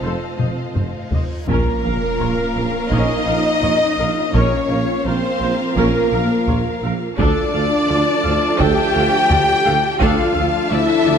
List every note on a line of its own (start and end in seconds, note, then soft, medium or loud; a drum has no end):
0.00 0.17 F1 medium
0.00 0.11 F1 soft
0.00 1.07 A3 medium
0.00 1.47 C4 medium
0.00 1.46 F4 medium
0.00 1.12 A4 medium
0.00 0.36 A4 soft
0.00 1.47 C5 medium
0.00 0.36 C5 medium
0.00 1.47 D#5 medium
0.00 1.24 F5 soft
0.00 reverse cymbal soft
0.04 0.12 F2 soft
0.38 0.53 F1 soft
0.38 0.48 F1 soft
0.38 0.48 F2 soft
0.38 0.46 C5 soft
0.38 0.46 D#5 soft
0.38 taiko mid medium
0.75 0.89 F1 soft
0.75 0.83 F1 soft
0.75 0.84 F2 soft
0.75 0.84 C5 soft
0.75 taiko low-mid medium
1.11 1.25 F1 soft
1.11 1.20 F1 soft
1.11 1.21 F2 soft
1.11 1.21 C5 soft
1.11 1.21 D#5 soft
1.11 taiko low medium
1.46 1.61 A#1 medium
1.46 1.56 A#1 medium
1.46 4.29 F3 medium
1.46 4.30 A#3 medium
1.46 2.88 A#3 medium
1.46 4.30 C#4 medium
1.46 1.81 C#4 medium
1.46 4.30 F4 medium
1.46 2.87 A#4 medium
1.46 2.91 A#4 medium
1.46 2.87 A#4 medium
1.46 4.30 A#4 medium
1.46 2.88 A#4 medium
1.46 1.82 A#4 medium
1.46 4.30 F5 medium
1.46 taiko medium
1.46 sub drop medium
1.83 1.97 A#1 soft
1.83 1.92 A#1 medium
1.83 1.91 A#4 medium
1.83 1.92 F5 soft
2.19 2.33 A#1 medium
2.19 2.28 A#1 medium
2.19 2.28 F4 medium
2.19 2.28 C#5 medium
2.55 2.70 A#1 medium
2.55 2.63 A#1 medium
2.55 2.63 A#4 medium
2.55 2.63 F5 soft
2.90 3.06 A#1 medium
2.90 2.99 A#1 medium
2.90 3.25 C#4 medium
2.90 4.34 D#4 medium
2.90 4.34 D#4 loud
2.90 3.26 A#4 medium
2.90 4.33 D#5 medium
2.90 4.32 D#5 medium
2.90 4.33 D#5 medium
2.90 taiko medium
3.27 3.41 A#1 medium
3.27 3.35 A#1 medium
3.27 3.36 A#4 medium
3.27 3.36 F5 medium
3.62 3.77 A#1 medium
3.62 3.71 A#1 medium
3.62 3.71 F4 soft
3.62 3.71 C#5 medium
3.62 taiko low medium
3.98 4.06 A#1 medium
3.98 4.13 A#1 medium
3.98 4.07 A#4 medium
3.98 4.07 F5 medium
4.32 4.48 A#1 medium
4.32 4.42 A#1 medium
4.32 7.13 F3 medium
4.32 7.13 A#3 medium
4.32 4.67 C#4 medium
4.32 5.05 C#4 medium
4.32 7.13 F4 medium
4.32 7.13 A#4 medium
4.32 4.67 A#4 medium
4.32 5.06 C#5 medium
4.32 5.05 C#5 medium
4.32 5.06 C#5 medium
4.32 7.13 F5 medium
4.32 taiko medium
4.69 4.83 A#1 medium
4.69 4.78 A#1 medium
4.69 4.78 A#4 medium
4.69 4.79 F5 soft
5.04 5.13 A#1 medium
5.04 5.20 A#1 medium
5.04 5.76 C4 loud
5.04 5.75 C4 medium
5.04 5.15 F4 medium
5.04 5.14 A#4 medium
5.04 5.74 C5 medium
5.04 5.75 C5 medium
5.04 5.77 C5 medium
5.04 5.75 C5 medium
5.41 5.49 A#1 medium
5.41 5.55 A#1 medium
5.41 5.50 A#4 soft
5.41 5.50 F5 medium
5.75 5.84 A#1 medium
5.75 5.91 A#1 medium
5.75 6.83 A#3 medium
5.75 6.81 A#3 medium
5.75 6.10 C#4 medium
5.75 6.82 A#4 medium
5.75 6.80 A#4 medium
5.75 6.83 A#4 medium
5.75 6.81 A#4 medium
5.75 6.10 A#4 medium
5.75 taiko medium
6.12 6.20 A#1 medium
6.12 6.27 A#1 medium
6.12 6.22 A#4 medium
6.12 6.22 F5 medium
6.48 6.62 A#1 medium
6.48 6.56 A#1 medium
6.48 6.57 F4 medium
6.48 6.57 C#5 medium
6.48 taiko low medium
6.83 6.97 A#1 medium
6.83 6.91 A#1 medium
6.83 6.92 A#4 medium
6.83 6.93 F5 medium
7.17 7.32 D2 medium
7.17 7.27 D2 medium
7.17 9.85 F3 medium
7.17 9.85 A3 medium
7.17 8.56 D4 loud
7.17 10.00 D4 medium
7.17 8.56 D4 medium
7.17 7.51 D4 medium
7.17 9.97 F4 medium
7.17 9.99 A4 medium
7.17 7.51 A4 medium
7.17 8.56 D5 loud
7.17 8.56 D5 medium
7.17 10.00 A5 medium
7.17 taiko loud
7.53 7.68 D2 medium
7.53 7.62 D2 medium
7.53 7.62 A4 medium
7.53 7.62 F5 medium
7.88 8.03 D2 medium
7.88 7.98 D2 medium
7.88 7.97 F4 medium
7.88 7.97 D5 medium
8.23 8.39 D2 medium
8.23 8.32 D2 medium
8.23 8.31 A4 medium
8.23 8.31 F5 medium
8.58 8.68 D2 medium
8.58 8.75 D2 loud
8.58 8.92 D4 medium
8.58 10.00 G4 loud
8.58 10.01 G4 loud
8.58 8.92 A4 medium
8.58 10.01 G5 loud
8.58 9.98 G5 loud
8.58 10.01 G5 loud
8.58 9.98 G5 loud
8.58 taiko medium
8.94 9.03 D2 medium
8.94 9.09 D2 medium
8.94 9.02 A4 medium
8.94 9.02 F5 medium
9.30 9.38 D2 medium
9.30 9.45 D2 medium
9.30 9.38 F4 medium
9.30 9.38 D5 medium
9.30 taiko low medium
9.64 9.74 D2 medium
9.64 9.80 D2 medium
9.64 9.72 A4 medium
9.64 9.72 F5 medium
10.00 10.08 D2 loud
10.00 10.15 D2 loud
10.00 11.18 F3 loud
10.00 11.18 F3 medium
10.00 11.18 A3 medium
10.00 10.34 D4 loud
10.00 11.18 D4 loud
10.00 10.71 F4 loud
10.00 10.70 F4 medium
10.00 11.18 A4 loud
10.00 10.34 A4 medium
10.00 10.69 F5 medium
10.00 10.70 F5 medium
10.00 11.18 A5 loud
10.00 taiko loud
10.35 10.43 D2 medium
10.35 10.51 D2 medium
10.35 10.43 A4 medium
10.35 10.43 F5 medium
10.70 10.85 D2 medium
10.70 10.79 D2 medium
10.70 10.79 F3 medium
10.70 11.18 E4 loud
10.70 11.18 E4 medium
10.70 10.79 D5 medium
10.70 11.18 E5 loud
11.06 11.14 D2 medium
11.06 11.18 D2 medium
11.06 11.14 A4 medium
11.06 11.14 D5 medium